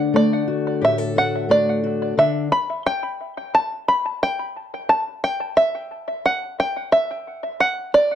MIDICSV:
0, 0, Header, 1, 3, 480
1, 0, Start_track
1, 0, Tempo, 677966
1, 1775, Time_signature, 4, 2, 24, 8
1, 5771, End_track
2, 0, Start_track
2, 0, Title_t, "Five-string banjo"
2, 0, Program_c, 0, 105
2, 0, Note_on_c, 0, 78, 95
2, 111, Note_off_c, 0, 78, 0
2, 113, Note_on_c, 0, 74, 87
2, 598, Note_off_c, 0, 74, 0
2, 599, Note_on_c, 0, 76, 87
2, 811, Note_off_c, 0, 76, 0
2, 836, Note_on_c, 0, 78, 86
2, 1070, Note_on_c, 0, 74, 78
2, 1072, Note_off_c, 0, 78, 0
2, 1548, Note_on_c, 0, 76, 80
2, 1557, Note_off_c, 0, 74, 0
2, 1765, Note_off_c, 0, 76, 0
2, 1784, Note_on_c, 0, 83, 98
2, 2027, Note_off_c, 0, 83, 0
2, 2028, Note_on_c, 0, 79, 92
2, 2473, Note_off_c, 0, 79, 0
2, 2510, Note_on_c, 0, 81, 92
2, 2747, Note_off_c, 0, 81, 0
2, 2750, Note_on_c, 0, 83, 90
2, 2989, Note_off_c, 0, 83, 0
2, 2994, Note_on_c, 0, 79, 91
2, 3461, Note_off_c, 0, 79, 0
2, 3464, Note_on_c, 0, 81, 86
2, 3706, Note_off_c, 0, 81, 0
2, 3709, Note_on_c, 0, 79, 93
2, 3925, Note_off_c, 0, 79, 0
2, 3943, Note_on_c, 0, 76, 89
2, 4429, Note_on_c, 0, 78, 89
2, 4433, Note_off_c, 0, 76, 0
2, 4668, Note_off_c, 0, 78, 0
2, 4671, Note_on_c, 0, 79, 94
2, 4901, Note_on_c, 0, 76, 83
2, 4910, Note_off_c, 0, 79, 0
2, 5383, Note_on_c, 0, 78, 90
2, 5392, Note_off_c, 0, 76, 0
2, 5602, Note_off_c, 0, 78, 0
2, 5623, Note_on_c, 0, 74, 94
2, 5771, Note_off_c, 0, 74, 0
2, 5771, End_track
3, 0, Start_track
3, 0, Title_t, "Steel-string acoustic guitar"
3, 0, Program_c, 1, 25
3, 0, Note_on_c, 1, 50, 66
3, 0, Note_on_c, 1, 57, 57
3, 0, Note_on_c, 1, 62, 51
3, 93, Note_off_c, 1, 57, 0
3, 96, Note_on_c, 1, 57, 59
3, 338, Note_on_c, 1, 66, 54
3, 577, Note_on_c, 1, 67, 55
3, 578, Note_on_c, 1, 45, 53
3, 695, Note_off_c, 1, 67, 0
3, 695, Note_on_c, 1, 69, 55
3, 813, Note_off_c, 1, 66, 0
3, 821, Note_on_c, 1, 66, 55
3, 1046, Note_off_c, 1, 57, 0
3, 1054, Note_off_c, 1, 62, 0
3, 1055, Note_on_c, 1, 57, 58
3, 1062, Note_on_c, 1, 62, 52
3, 1291, Note_off_c, 1, 66, 0
3, 1300, Note_on_c, 1, 66, 52
3, 1506, Note_off_c, 1, 57, 0
3, 1508, Note_off_c, 1, 45, 0
3, 1509, Note_off_c, 1, 66, 0
3, 1510, Note_off_c, 1, 62, 0
3, 1531, Note_off_c, 1, 50, 0
3, 1535, Note_off_c, 1, 69, 0
3, 1539, Note_on_c, 1, 50, 63
3, 1543, Note_on_c, 1, 62, 51
3, 1750, Note_off_c, 1, 62, 0
3, 1777, Note_off_c, 1, 50, 0
3, 5771, End_track
0, 0, End_of_file